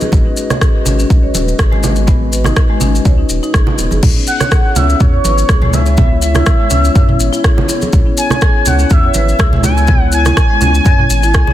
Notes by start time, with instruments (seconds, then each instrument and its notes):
Already playing: analog synth pad G#3 F#4 B4 D#5
0.01 marimba G#4, high conga, maracas
0.12 analog synth bass G#1, kick, high conga, maracas
0.26 marimba C#4
0.37 maracas
0.50 marimba C#5, cross-stick, low conga, maracas
0.61 marimba G#4, kick, cross-stick, maracas
0.85 analog synth bass G#1, marimba C#4, low conga, maracas
0.99 marimba C#4, maracas
1.10 analog synth bass B1, kick, maracas
1.23 marimba C#5
1.34 analog synth bass D#1, marimba B4, high conga, maracas
1.48 maracas
1.59 analog synth bass G#1, marimba G#4, kick, cross-stick, high conga, maracas
1.72 marimba G#3, high conga
1.83 low conga, maracas
1.96 marimba B3, maracas
2.07 marimba B3, kick, high conga, low conga, maracas
2.32 marimba B4, maracas
2.44 marimba D#4, cross-stick, high conga, low conga, maracas
2.56 kick, cross-stick, maracas
2.70 marimba G#3
2.81 analog synth bass G#1, marimba C#4, low conga, maracas
2.95 maracas
3.05 analog synth bass C#2, marimba C#5, kick, high conga, maracas
3.18 marimba D#4
3.29 analog synth bass D#1, maracas
3.43 marimba D#4, maracas
3.54 analog synth bass G#1, kick, cross-stick, maracas
3.67 low conga
3.78 analog synth bass D#1, marimba B3, high conga, maracas
3.91 analog synth bass F#1, marimba G#4, high conga, maracas
4.03 analog synth bass C#2, analog synth pad B3 E4 C#5, kick, mid tom, crash, high conga, maracas
4.16 marimba C#4
4.27 analog synth lead F#5, maracas
4.40 marimba C#5, cross-stick, low conga, maracas
4.51 marimba G#4, kick, cross-stick, maracas
4.76 analog synth bass C#2, marimba C#4, analog synth lead E5, low conga, maracas
4.89 marimba C#4, maracas
5.00 analog synth bass E2, analog synth lead C#5, kick, mid tom, maracas
5.14 marimba C#5
5.25 analog synth bass G#1, marimba B4, high conga, maracas
5.38 maracas
5.49 analog synth bass C#2, marimba G#4, kick, cross-stick, high conga, maracas
5.62 marimba G#3, mid tom, high conga
5.73 analog synth lead E5, low conga, maracas
5.86 marimba B3, maracas
5.97 marimba B3, kick, mid tom, high conga, low conga, maracas
6.22 marimba E4, analog synth lead E5, maracas
6.35 marimba E4, cross-stick, low conga, maracas
6.46 kick, cross-stick, maracas
6.60 marimba G#3
6.70 analog synth bass C#2, marimba C#4, low conga, maracas
6.85 maracas
6.95 analog synth bass F#2, marimba C#5, kick, high conga, maracas
7.09 marimba E4, mid tom
7.20 analog synth bass G#1, maracas
7.33 marimba E4, maracas
7.44 kick, cross-stick, maracas
7.58 low conga
7.68 marimba B3, high conga, maracas
7.82 marimba G#4, high conga, maracas
7.93 analog synth bass C#2, kick, mid tom, high conga, maracas
8.06 marimba C#4
8.17 analog synth lead G#5, maracas
8.30 marimba C#5, cross-stick, low conga, maracas
8.41 marimba G#4, kick, cross-stick, maracas
8.66 analog synth bass C#2, marimba C#4, analog synth lead F#5, low conga, maracas
8.79 marimba C#4, maracas
8.90 analog synth bass E2, analog synth lead E5, kick, mid tom, maracas
9.03 marimba C#5
9.14 analog synth bass G#1, marimba B4, high conga, maracas
9.29 maracas
9.39 analog synth bass C#2, marimba G#4, kick, cross-stick, high conga, maracas
9.53 marimba G#3, mid tom, high conga
9.63 analog synth lead G#5, low conga, maracas
9.77 marimba B3, maracas
9.87 marimba B3, kick, mid tom, high conga, low conga, maracas
10.12 marimba E4, analog synth lead G#5, maracas
10.25 marimba E4, cross-stick, low conga, maracas
10.37 kick, cross-stick, maracas
10.50 marimba G#3
10.61 analog synth bass C#2, marimba C#4, low conga, maracas
10.75 maracas
10.85 analog synth bass F#2, marimba C#5, kick, high conga, maracas
10.99 marimba E4, mid tom
11.10 analog synth bass G#1, maracas
11.23 marimba E4, maracas
11.34 analog synth bass C#2, kick, cross-stick, maracas
11.47 low conga